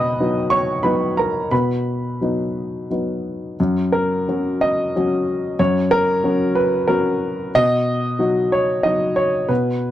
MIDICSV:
0, 0, Header, 1, 2, 480
1, 0, Start_track
1, 0, Key_signature, 6, "major"
1, 0, Tempo, 655738
1, 1107, Time_signature, 3, 2, 24, 8
1, 1107, Tempo, 687285
1, 3507, Tempo, 638298
1, 4947, Tempo, 660793
1, 7161, End_track
2, 0, Start_track
2, 0, Title_t, "Grand piano"
2, 0, Program_c, 0, 0
2, 0, Control_c, 0, 64, 127
2, 0, Note_on_c, 0, 47, 65
2, 0, Note_on_c, 0, 71, 74
2, 0, Note_on_c, 0, 75, 78
2, 0, Note_on_c, 0, 83, 101
2, 0, Note_on_c, 0, 87, 96
2, 129, Note_off_c, 0, 47, 0
2, 147, Note_on_c, 0, 59, 47
2, 149, Note_on_c, 0, 63, 49
2, 151, Note_on_c, 0, 54, 46
2, 354, Note_off_c, 0, 75, 0
2, 367, Note_on_c, 0, 85, 88
2, 377, Note_on_c, 0, 73, 65
2, 378, Note_off_c, 0, 87, 0
2, 588, Note_off_c, 0, 59, 0
2, 589, Note_off_c, 0, 63, 0
2, 590, Note_off_c, 0, 54, 0
2, 598, Note_off_c, 0, 73, 0
2, 608, Note_off_c, 0, 83, 0
2, 608, Note_on_c, 0, 83, 74
2, 610, Note_off_c, 0, 85, 0
2, 613, Note_on_c, 0, 54, 41
2, 614, Note_on_c, 0, 59, 42
2, 618, Note_off_c, 0, 71, 0
2, 618, Note_on_c, 0, 63, 45
2, 618, Note_on_c, 0, 71, 56
2, 843, Note_off_c, 0, 71, 0
2, 855, Note_off_c, 0, 83, 0
2, 859, Note_on_c, 0, 82, 70
2, 874, Note_on_c, 0, 70, 56
2, 1077, Note_off_c, 0, 54, 0
2, 1077, Note_off_c, 0, 59, 0
2, 1079, Note_off_c, 0, 63, 0
2, 1098, Note_off_c, 0, 70, 0
2, 1107, Note_off_c, 0, 82, 0
2, 1108, Note_on_c, 0, 83, 70
2, 1110, Note_on_c, 0, 47, 52
2, 1112, Note_on_c, 0, 71, 53
2, 1120, Control_c, 0, 64, 0
2, 1233, Control_c, 0, 64, 127
2, 1576, Note_off_c, 0, 47, 0
2, 1597, Note_on_c, 0, 54, 36
2, 1603, Note_on_c, 0, 59, 35
2, 1603, Note_on_c, 0, 63, 40
2, 2045, Note_off_c, 0, 71, 0
2, 2047, Note_off_c, 0, 54, 0
2, 2050, Note_off_c, 0, 59, 0
2, 2050, Note_off_c, 0, 63, 0
2, 2071, Note_off_c, 0, 83, 0
2, 2079, Note_on_c, 0, 54, 29
2, 2086, Note_on_c, 0, 59, 33
2, 2086, Note_on_c, 0, 63, 33
2, 2525, Note_off_c, 0, 54, 0
2, 2529, Note_off_c, 0, 59, 0
2, 2529, Note_off_c, 0, 63, 0
2, 2561, Control_c, 0, 64, 0
2, 2565, Note_on_c, 0, 42, 58
2, 2668, Control_c, 0, 64, 127
2, 2792, Note_on_c, 0, 70, 85
2, 3022, Note_off_c, 0, 42, 0
2, 3042, Note_on_c, 0, 54, 42
2, 3045, Note_on_c, 0, 61, 42
2, 3048, Note_on_c, 0, 66, 46
2, 3272, Note_on_c, 0, 75, 87
2, 3279, Note_off_c, 0, 70, 0
2, 3486, Note_off_c, 0, 54, 0
2, 3488, Note_off_c, 0, 61, 0
2, 3489, Note_off_c, 0, 66, 0
2, 3515, Note_on_c, 0, 54, 44
2, 3519, Note_on_c, 0, 61, 45
2, 3519, Note_on_c, 0, 66, 45
2, 3962, Note_off_c, 0, 54, 0
2, 3964, Note_off_c, 0, 61, 0
2, 3964, Note_off_c, 0, 66, 0
2, 3987, Note_off_c, 0, 75, 0
2, 3992, Note_on_c, 0, 42, 65
2, 3992, Note_on_c, 0, 73, 84
2, 4000, Control_c, 0, 64, 0
2, 4110, Control_c, 0, 64, 127
2, 4230, Note_on_c, 0, 70, 96
2, 4232, Note_off_c, 0, 73, 0
2, 4458, Note_off_c, 0, 42, 0
2, 4474, Note_on_c, 0, 54, 48
2, 4480, Note_on_c, 0, 61, 52
2, 4487, Note_on_c, 0, 66, 56
2, 4709, Note_off_c, 0, 70, 0
2, 4714, Note_on_c, 0, 71, 83
2, 4919, Note_off_c, 0, 54, 0
2, 4922, Note_off_c, 0, 61, 0
2, 4925, Note_off_c, 0, 66, 0
2, 4950, Note_off_c, 0, 71, 0
2, 4956, Note_on_c, 0, 70, 79
2, 4962, Note_on_c, 0, 54, 46
2, 4966, Note_on_c, 0, 61, 46
2, 4967, Note_on_c, 0, 66, 51
2, 5412, Note_off_c, 0, 54, 0
2, 5414, Note_off_c, 0, 61, 0
2, 5415, Note_off_c, 0, 66, 0
2, 5438, Note_off_c, 0, 70, 0
2, 5446, Note_on_c, 0, 75, 112
2, 5449, Control_c, 0, 64, 0
2, 5450, Note_on_c, 0, 47, 70
2, 5584, Control_c, 0, 64, 127
2, 5897, Note_off_c, 0, 47, 0
2, 5911, Note_on_c, 0, 54, 45
2, 5915, Note_on_c, 0, 66, 50
2, 5916, Note_on_c, 0, 63, 43
2, 6144, Note_off_c, 0, 75, 0
2, 6152, Note_on_c, 0, 73, 78
2, 6350, Note_off_c, 0, 54, 0
2, 6352, Note_off_c, 0, 66, 0
2, 6353, Note_off_c, 0, 63, 0
2, 6378, Note_on_c, 0, 75, 82
2, 6382, Note_off_c, 0, 73, 0
2, 6388, Note_on_c, 0, 54, 37
2, 6389, Note_on_c, 0, 63, 39
2, 6389, Note_on_c, 0, 66, 40
2, 6615, Note_off_c, 0, 75, 0
2, 6615, Note_on_c, 0, 73, 76
2, 6835, Note_off_c, 0, 54, 0
2, 6836, Note_off_c, 0, 63, 0
2, 6836, Note_off_c, 0, 66, 0
2, 6852, Note_on_c, 0, 71, 68
2, 6854, Note_on_c, 0, 47, 53
2, 6859, Note_off_c, 0, 73, 0
2, 6873, Control_c, 0, 64, 0
2, 6996, Control_c, 0, 64, 127
2, 7161, Note_off_c, 0, 47, 0
2, 7161, Note_off_c, 0, 71, 0
2, 7161, End_track
0, 0, End_of_file